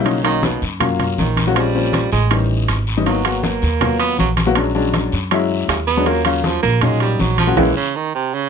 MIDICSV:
0, 0, Header, 1, 5, 480
1, 0, Start_track
1, 0, Tempo, 375704
1, 74, Time_signature, 4, 2, 24, 8
1, 10849, End_track
2, 0, Start_track
2, 0, Title_t, "Grand piano"
2, 0, Program_c, 0, 0
2, 60, Note_on_c, 0, 54, 77
2, 64, Note_on_c, 0, 61, 71
2, 65, Note_on_c, 0, 58, 69
2, 66, Note_on_c, 0, 63, 78
2, 235, Note_off_c, 0, 54, 0
2, 237, Note_off_c, 0, 61, 0
2, 238, Note_off_c, 0, 58, 0
2, 238, Note_off_c, 0, 63, 0
2, 301, Note_on_c, 0, 54, 71
2, 303, Note_on_c, 0, 58, 74
2, 306, Note_on_c, 0, 61, 68
2, 306, Note_on_c, 0, 63, 78
2, 812, Note_off_c, 0, 54, 0
2, 813, Note_off_c, 0, 58, 0
2, 814, Note_off_c, 0, 61, 0
2, 814, Note_off_c, 0, 63, 0
2, 1023, Note_on_c, 0, 54, 84
2, 1027, Note_on_c, 0, 61, 73
2, 1029, Note_on_c, 0, 58, 87
2, 1029, Note_on_c, 0, 65, 101
2, 1617, Note_off_c, 0, 54, 0
2, 1619, Note_off_c, 0, 61, 0
2, 1620, Note_off_c, 0, 58, 0
2, 1620, Note_off_c, 0, 65, 0
2, 1879, Note_on_c, 0, 54, 82
2, 1880, Note_on_c, 0, 58, 70
2, 1883, Note_on_c, 0, 61, 66
2, 1886, Note_on_c, 0, 66, 94
2, 1961, Note_off_c, 0, 54, 0
2, 1961, Note_off_c, 0, 58, 0
2, 1963, Note_off_c, 0, 61, 0
2, 1964, Note_off_c, 0, 66, 0
2, 1983, Note_on_c, 0, 53, 77
2, 1986, Note_on_c, 0, 56, 73
2, 1987, Note_on_c, 0, 60, 64
2, 1990, Note_on_c, 0, 61, 80
2, 2157, Note_off_c, 0, 53, 0
2, 2158, Note_off_c, 0, 56, 0
2, 2159, Note_off_c, 0, 60, 0
2, 2160, Note_off_c, 0, 61, 0
2, 2227, Note_on_c, 0, 58, 65
2, 2231, Note_on_c, 0, 53, 76
2, 2232, Note_on_c, 0, 60, 68
2, 2238, Note_on_c, 0, 61, 81
2, 2735, Note_off_c, 0, 58, 0
2, 2736, Note_off_c, 0, 53, 0
2, 2737, Note_off_c, 0, 60, 0
2, 2740, Note_off_c, 0, 61, 0
2, 2953, Note_on_c, 0, 52, 68
2, 2953, Note_on_c, 0, 55, 68
2, 2955, Note_on_c, 0, 61, 66
2, 2955, Note_on_c, 0, 63, 75
2, 3541, Note_off_c, 0, 52, 0
2, 3542, Note_off_c, 0, 55, 0
2, 3542, Note_off_c, 0, 61, 0
2, 3543, Note_off_c, 0, 63, 0
2, 3796, Note_on_c, 0, 55, 74
2, 3800, Note_on_c, 0, 63, 90
2, 3801, Note_on_c, 0, 52, 80
2, 3804, Note_on_c, 0, 61, 66
2, 3879, Note_off_c, 0, 55, 0
2, 3881, Note_off_c, 0, 52, 0
2, 3881, Note_off_c, 0, 63, 0
2, 3883, Note_off_c, 0, 61, 0
2, 3915, Note_on_c, 0, 63, 83
2, 3916, Note_on_c, 0, 58, 73
2, 3917, Note_on_c, 0, 54, 81
2, 3917, Note_on_c, 0, 59, 74
2, 4083, Note_off_c, 0, 58, 0
2, 4083, Note_off_c, 0, 59, 0
2, 4083, Note_off_c, 0, 63, 0
2, 4084, Note_off_c, 0, 54, 0
2, 4155, Note_on_c, 0, 58, 63
2, 4157, Note_on_c, 0, 66, 77
2, 4160, Note_on_c, 0, 59, 64
2, 4161, Note_on_c, 0, 54, 73
2, 4658, Note_off_c, 0, 58, 0
2, 4660, Note_off_c, 0, 66, 0
2, 4661, Note_off_c, 0, 54, 0
2, 4661, Note_off_c, 0, 59, 0
2, 4863, Note_on_c, 0, 59, 61
2, 4867, Note_on_c, 0, 58, 68
2, 4867, Note_on_c, 0, 65, 84
2, 4869, Note_on_c, 0, 54, 70
2, 5456, Note_off_c, 0, 59, 0
2, 5458, Note_off_c, 0, 58, 0
2, 5459, Note_off_c, 0, 54, 0
2, 5459, Note_off_c, 0, 65, 0
2, 5703, Note_on_c, 0, 58, 92
2, 5708, Note_on_c, 0, 54, 89
2, 5711, Note_on_c, 0, 59, 87
2, 5711, Note_on_c, 0, 66, 108
2, 5792, Note_off_c, 0, 58, 0
2, 5795, Note_off_c, 0, 54, 0
2, 5796, Note_off_c, 0, 59, 0
2, 5796, Note_off_c, 0, 66, 0
2, 5829, Note_on_c, 0, 54, 94
2, 5834, Note_on_c, 0, 56, 83
2, 5836, Note_on_c, 0, 61, 89
2, 5837, Note_on_c, 0, 62, 101
2, 5999, Note_off_c, 0, 54, 0
2, 6002, Note_off_c, 0, 56, 0
2, 6003, Note_off_c, 0, 61, 0
2, 6003, Note_off_c, 0, 62, 0
2, 6065, Note_on_c, 0, 54, 92
2, 6066, Note_on_c, 0, 56, 76
2, 6071, Note_on_c, 0, 61, 87
2, 6071, Note_on_c, 0, 62, 111
2, 6573, Note_off_c, 0, 54, 0
2, 6574, Note_off_c, 0, 56, 0
2, 6576, Note_off_c, 0, 61, 0
2, 6576, Note_off_c, 0, 62, 0
2, 6790, Note_on_c, 0, 54, 90
2, 6793, Note_on_c, 0, 56, 84
2, 6793, Note_on_c, 0, 61, 79
2, 6799, Note_on_c, 0, 64, 108
2, 7380, Note_off_c, 0, 54, 0
2, 7381, Note_off_c, 0, 56, 0
2, 7381, Note_off_c, 0, 61, 0
2, 7384, Note_off_c, 0, 64, 0
2, 7629, Note_on_c, 0, 54, 89
2, 7630, Note_on_c, 0, 56, 78
2, 7631, Note_on_c, 0, 62, 86
2, 7632, Note_on_c, 0, 61, 69
2, 7715, Note_off_c, 0, 54, 0
2, 7716, Note_off_c, 0, 56, 0
2, 7716, Note_off_c, 0, 62, 0
2, 7717, Note_off_c, 0, 61, 0
2, 7743, Note_on_c, 0, 54, 80
2, 7747, Note_on_c, 0, 58, 73
2, 7750, Note_on_c, 0, 61, 71
2, 7751, Note_on_c, 0, 65, 90
2, 7916, Note_off_c, 0, 54, 0
2, 7918, Note_off_c, 0, 58, 0
2, 7920, Note_off_c, 0, 61, 0
2, 7920, Note_off_c, 0, 65, 0
2, 7990, Note_on_c, 0, 54, 72
2, 7992, Note_on_c, 0, 61, 74
2, 7997, Note_on_c, 0, 58, 69
2, 8000, Note_on_c, 0, 65, 86
2, 8496, Note_off_c, 0, 54, 0
2, 8497, Note_off_c, 0, 61, 0
2, 8499, Note_off_c, 0, 58, 0
2, 8501, Note_off_c, 0, 65, 0
2, 8710, Note_on_c, 0, 54, 79
2, 8713, Note_on_c, 0, 58, 70
2, 8713, Note_on_c, 0, 61, 70
2, 8720, Note_on_c, 0, 63, 87
2, 9300, Note_off_c, 0, 54, 0
2, 9301, Note_off_c, 0, 58, 0
2, 9301, Note_off_c, 0, 61, 0
2, 9305, Note_off_c, 0, 63, 0
2, 9545, Note_on_c, 0, 54, 87
2, 9545, Note_on_c, 0, 58, 73
2, 9549, Note_on_c, 0, 61, 78
2, 9555, Note_on_c, 0, 66, 95
2, 9633, Note_off_c, 0, 54, 0
2, 9633, Note_off_c, 0, 58, 0
2, 9636, Note_off_c, 0, 61, 0
2, 9638, Note_off_c, 0, 66, 0
2, 9664, Note_on_c, 0, 58, 94
2, 9666, Note_on_c, 0, 56, 103
2, 9669, Note_on_c, 0, 61, 90
2, 9821, Note_off_c, 0, 58, 0
2, 9823, Note_off_c, 0, 56, 0
2, 9825, Note_off_c, 0, 61, 0
2, 10849, End_track
3, 0, Start_track
3, 0, Title_t, "Baritone saxophone"
3, 0, Program_c, 1, 67
3, 0, Note_on_c, 1, 49, 72
3, 314, Note_off_c, 1, 49, 0
3, 321, Note_on_c, 1, 51, 99
3, 568, Note_on_c, 1, 47, 76
3, 587, Note_off_c, 1, 51, 0
3, 801, Note_off_c, 1, 47, 0
3, 1521, Note_on_c, 1, 51, 82
3, 2007, Note_on_c, 1, 55, 88
3, 2026, Note_off_c, 1, 51, 0
3, 2706, Note_off_c, 1, 55, 0
3, 2713, Note_on_c, 1, 56, 96
3, 2958, Note_on_c, 1, 51, 71
3, 2977, Note_off_c, 1, 56, 0
3, 3196, Note_off_c, 1, 51, 0
3, 3917, Note_on_c, 1, 54, 76
3, 4384, Note_on_c, 1, 58, 81
3, 4404, Note_off_c, 1, 54, 0
3, 5096, Note_off_c, 1, 58, 0
3, 5103, Note_on_c, 1, 59, 104
3, 5331, Note_off_c, 1, 59, 0
3, 5361, Note_on_c, 1, 54, 82
3, 5503, Note_off_c, 1, 54, 0
3, 7502, Note_on_c, 1, 59, 101
3, 7765, Note_on_c, 1, 58, 100
3, 7784, Note_off_c, 1, 59, 0
3, 7986, Note_off_c, 1, 58, 0
3, 7993, Note_on_c, 1, 49, 83
3, 8236, Note_on_c, 1, 53, 99
3, 8255, Note_off_c, 1, 49, 0
3, 8458, Note_off_c, 1, 53, 0
3, 8466, Note_on_c, 1, 58, 108
3, 8722, Note_on_c, 1, 56, 98
3, 8742, Note_off_c, 1, 58, 0
3, 8958, Note_off_c, 1, 56, 0
3, 8965, Note_on_c, 1, 55, 91
3, 9199, Note_on_c, 1, 54, 86
3, 9218, Note_off_c, 1, 55, 0
3, 9431, Note_off_c, 1, 54, 0
3, 9438, Note_on_c, 1, 53, 103
3, 9676, Note_on_c, 1, 52, 91
3, 9695, Note_off_c, 1, 53, 0
3, 9915, Note_off_c, 1, 52, 0
3, 9923, Note_on_c, 1, 49, 103
3, 10168, Note_on_c, 1, 51, 96
3, 10188, Note_off_c, 1, 49, 0
3, 10401, Note_off_c, 1, 51, 0
3, 10407, Note_on_c, 1, 48, 95
3, 10657, Note_on_c, 1, 49, 102
3, 10676, Note_off_c, 1, 48, 0
3, 10849, Note_off_c, 1, 49, 0
3, 10849, End_track
4, 0, Start_track
4, 0, Title_t, "Upright bass"
4, 0, Program_c, 2, 32
4, 0, Note_on_c, 2, 35, 89
4, 716, Note_off_c, 2, 35, 0
4, 794, Note_on_c, 2, 42, 85
4, 1464, Note_off_c, 2, 42, 0
4, 1513, Note_on_c, 2, 34, 92
4, 2639, Note_off_c, 2, 34, 0
4, 2716, Note_on_c, 2, 33, 101
4, 3384, Note_off_c, 2, 33, 0
4, 3436, Note_on_c, 2, 32, 85
4, 4560, Note_off_c, 2, 32, 0
4, 4634, Note_on_c, 2, 39, 96
4, 5304, Note_off_c, 2, 39, 0
4, 5355, Note_on_c, 2, 34, 98
4, 6479, Note_off_c, 2, 34, 0
4, 6552, Note_on_c, 2, 42, 85
4, 7222, Note_off_c, 2, 42, 0
4, 7263, Note_on_c, 2, 39, 86
4, 8393, Note_off_c, 2, 39, 0
4, 8474, Note_on_c, 2, 34, 96
4, 9143, Note_off_c, 2, 34, 0
4, 9196, Note_on_c, 2, 34, 101
4, 9641, Note_off_c, 2, 34, 0
4, 9668, Note_on_c, 2, 34, 85
4, 9849, Note_off_c, 2, 34, 0
4, 10849, End_track
5, 0, Start_track
5, 0, Title_t, "Drums"
5, 73, Note_on_c, 9, 63, 38
5, 73, Note_on_c, 9, 65, 66
5, 77, Note_on_c, 9, 74, 67
5, 200, Note_off_c, 9, 63, 0
5, 201, Note_off_c, 9, 65, 0
5, 205, Note_off_c, 9, 74, 0
5, 313, Note_on_c, 9, 65, 94
5, 315, Note_on_c, 9, 63, 36
5, 441, Note_off_c, 9, 65, 0
5, 443, Note_off_c, 9, 63, 0
5, 546, Note_on_c, 9, 63, 105
5, 552, Note_on_c, 9, 73, 71
5, 674, Note_off_c, 9, 63, 0
5, 679, Note_off_c, 9, 73, 0
5, 786, Note_on_c, 9, 63, 40
5, 793, Note_on_c, 9, 73, 73
5, 914, Note_off_c, 9, 63, 0
5, 921, Note_off_c, 9, 73, 0
5, 1028, Note_on_c, 9, 65, 97
5, 1032, Note_on_c, 9, 63, 36
5, 1032, Note_on_c, 9, 64, 86
5, 1032, Note_on_c, 9, 74, 67
5, 1156, Note_off_c, 9, 65, 0
5, 1160, Note_off_c, 9, 63, 0
5, 1160, Note_off_c, 9, 64, 0
5, 1160, Note_off_c, 9, 74, 0
5, 1269, Note_on_c, 9, 63, 34
5, 1269, Note_on_c, 9, 64, 74
5, 1273, Note_on_c, 9, 65, 62
5, 1397, Note_off_c, 9, 63, 0
5, 1397, Note_off_c, 9, 64, 0
5, 1401, Note_off_c, 9, 65, 0
5, 1511, Note_on_c, 9, 73, 70
5, 1514, Note_on_c, 9, 63, 85
5, 1638, Note_off_c, 9, 73, 0
5, 1642, Note_off_c, 9, 63, 0
5, 1746, Note_on_c, 9, 63, 84
5, 1753, Note_on_c, 9, 65, 75
5, 1753, Note_on_c, 9, 73, 81
5, 1873, Note_off_c, 9, 63, 0
5, 1880, Note_off_c, 9, 73, 0
5, 1881, Note_off_c, 9, 65, 0
5, 1987, Note_on_c, 9, 74, 71
5, 1990, Note_on_c, 9, 63, 35
5, 1994, Note_on_c, 9, 65, 95
5, 2115, Note_off_c, 9, 74, 0
5, 2117, Note_off_c, 9, 63, 0
5, 2121, Note_off_c, 9, 65, 0
5, 2232, Note_on_c, 9, 63, 34
5, 2359, Note_off_c, 9, 63, 0
5, 2467, Note_on_c, 9, 63, 98
5, 2471, Note_on_c, 9, 73, 65
5, 2477, Note_on_c, 9, 65, 67
5, 2595, Note_off_c, 9, 63, 0
5, 2599, Note_off_c, 9, 73, 0
5, 2604, Note_off_c, 9, 65, 0
5, 2704, Note_on_c, 9, 73, 73
5, 2708, Note_on_c, 9, 63, 40
5, 2832, Note_off_c, 9, 73, 0
5, 2835, Note_off_c, 9, 63, 0
5, 2946, Note_on_c, 9, 74, 68
5, 2948, Note_on_c, 9, 65, 99
5, 2953, Note_on_c, 9, 63, 38
5, 3074, Note_off_c, 9, 74, 0
5, 3076, Note_off_c, 9, 65, 0
5, 3081, Note_off_c, 9, 63, 0
5, 3193, Note_on_c, 9, 63, 33
5, 3321, Note_off_c, 9, 63, 0
5, 3426, Note_on_c, 9, 73, 67
5, 3430, Note_on_c, 9, 65, 82
5, 3434, Note_on_c, 9, 63, 32
5, 3554, Note_off_c, 9, 73, 0
5, 3557, Note_off_c, 9, 65, 0
5, 3562, Note_off_c, 9, 63, 0
5, 3667, Note_on_c, 9, 73, 83
5, 3669, Note_on_c, 9, 63, 37
5, 3795, Note_off_c, 9, 73, 0
5, 3797, Note_off_c, 9, 63, 0
5, 3902, Note_on_c, 9, 63, 40
5, 3912, Note_on_c, 9, 74, 73
5, 3915, Note_on_c, 9, 65, 62
5, 4029, Note_off_c, 9, 63, 0
5, 4040, Note_off_c, 9, 74, 0
5, 4043, Note_off_c, 9, 65, 0
5, 4149, Note_on_c, 9, 63, 32
5, 4150, Note_on_c, 9, 65, 96
5, 4277, Note_off_c, 9, 63, 0
5, 4278, Note_off_c, 9, 65, 0
5, 4386, Note_on_c, 9, 63, 97
5, 4389, Note_on_c, 9, 73, 78
5, 4514, Note_off_c, 9, 63, 0
5, 4517, Note_off_c, 9, 73, 0
5, 4626, Note_on_c, 9, 73, 69
5, 4627, Note_on_c, 9, 63, 39
5, 4754, Note_off_c, 9, 73, 0
5, 4755, Note_off_c, 9, 63, 0
5, 4862, Note_on_c, 9, 74, 64
5, 4868, Note_on_c, 9, 63, 39
5, 4868, Note_on_c, 9, 64, 97
5, 4868, Note_on_c, 9, 65, 97
5, 4989, Note_off_c, 9, 74, 0
5, 4995, Note_off_c, 9, 63, 0
5, 4995, Note_off_c, 9, 64, 0
5, 4996, Note_off_c, 9, 65, 0
5, 5104, Note_on_c, 9, 65, 71
5, 5112, Note_on_c, 9, 63, 37
5, 5231, Note_off_c, 9, 65, 0
5, 5240, Note_off_c, 9, 63, 0
5, 5341, Note_on_c, 9, 73, 72
5, 5350, Note_on_c, 9, 63, 87
5, 5469, Note_off_c, 9, 73, 0
5, 5478, Note_off_c, 9, 63, 0
5, 5583, Note_on_c, 9, 63, 88
5, 5583, Note_on_c, 9, 65, 77
5, 5586, Note_on_c, 9, 73, 84
5, 5711, Note_off_c, 9, 63, 0
5, 5711, Note_off_c, 9, 65, 0
5, 5714, Note_off_c, 9, 73, 0
5, 5818, Note_on_c, 9, 65, 94
5, 5824, Note_on_c, 9, 74, 72
5, 5946, Note_off_c, 9, 65, 0
5, 5952, Note_off_c, 9, 74, 0
5, 6069, Note_on_c, 9, 63, 32
5, 6196, Note_off_c, 9, 63, 0
5, 6305, Note_on_c, 9, 73, 72
5, 6307, Note_on_c, 9, 65, 67
5, 6308, Note_on_c, 9, 63, 105
5, 6433, Note_off_c, 9, 73, 0
5, 6435, Note_off_c, 9, 65, 0
5, 6436, Note_off_c, 9, 63, 0
5, 6545, Note_on_c, 9, 73, 78
5, 6549, Note_on_c, 9, 63, 39
5, 6673, Note_off_c, 9, 73, 0
5, 6677, Note_off_c, 9, 63, 0
5, 6787, Note_on_c, 9, 65, 99
5, 6790, Note_on_c, 9, 74, 70
5, 6794, Note_on_c, 9, 63, 40
5, 6915, Note_off_c, 9, 65, 0
5, 6918, Note_off_c, 9, 74, 0
5, 6922, Note_off_c, 9, 63, 0
5, 7038, Note_on_c, 9, 63, 35
5, 7166, Note_off_c, 9, 63, 0
5, 7270, Note_on_c, 9, 65, 95
5, 7270, Note_on_c, 9, 66, 70
5, 7272, Note_on_c, 9, 73, 73
5, 7280, Note_on_c, 9, 63, 37
5, 7398, Note_off_c, 9, 65, 0
5, 7398, Note_off_c, 9, 66, 0
5, 7399, Note_off_c, 9, 73, 0
5, 7408, Note_off_c, 9, 63, 0
5, 7511, Note_on_c, 9, 63, 39
5, 7512, Note_on_c, 9, 73, 79
5, 7639, Note_off_c, 9, 63, 0
5, 7640, Note_off_c, 9, 73, 0
5, 7745, Note_on_c, 9, 65, 64
5, 7752, Note_on_c, 9, 74, 81
5, 7754, Note_on_c, 9, 63, 40
5, 7873, Note_off_c, 9, 65, 0
5, 7880, Note_off_c, 9, 74, 0
5, 7881, Note_off_c, 9, 63, 0
5, 7981, Note_on_c, 9, 65, 92
5, 7988, Note_on_c, 9, 63, 33
5, 8109, Note_off_c, 9, 65, 0
5, 8116, Note_off_c, 9, 63, 0
5, 8226, Note_on_c, 9, 63, 106
5, 8233, Note_on_c, 9, 73, 69
5, 8354, Note_off_c, 9, 63, 0
5, 8361, Note_off_c, 9, 73, 0
5, 8471, Note_on_c, 9, 73, 73
5, 8480, Note_on_c, 9, 63, 37
5, 8599, Note_off_c, 9, 73, 0
5, 8608, Note_off_c, 9, 63, 0
5, 8705, Note_on_c, 9, 65, 96
5, 8711, Note_on_c, 9, 63, 37
5, 8711, Note_on_c, 9, 64, 94
5, 8711, Note_on_c, 9, 74, 65
5, 8833, Note_off_c, 9, 65, 0
5, 8838, Note_off_c, 9, 63, 0
5, 8838, Note_off_c, 9, 64, 0
5, 8839, Note_off_c, 9, 74, 0
5, 8947, Note_on_c, 9, 65, 66
5, 8951, Note_on_c, 9, 63, 37
5, 9074, Note_off_c, 9, 65, 0
5, 9079, Note_off_c, 9, 63, 0
5, 9191, Note_on_c, 9, 63, 87
5, 9192, Note_on_c, 9, 73, 73
5, 9319, Note_off_c, 9, 63, 0
5, 9320, Note_off_c, 9, 73, 0
5, 9428, Note_on_c, 9, 63, 86
5, 9429, Note_on_c, 9, 65, 79
5, 9432, Note_on_c, 9, 73, 84
5, 9556, Note_off_c, 9, 63, 0
5, 9557, Note_off_c, 9, 65, 0
5, 9559, Note_off_c, 9, 73, 0
5, 9670, Note_on_c, 9, 74, 104
5, 9671, Note_on_c, 9, 63, 105
5, 9675, Note_on_c, 9, 65, 97
5, 9798, Note_off_c, 9, 63, 0
5, 9798, Note_off_c, 9, 74, 0
5, 9802, Note_off_c, 9, 65, 0
5, 10849, End_track
0, 0, End_of_file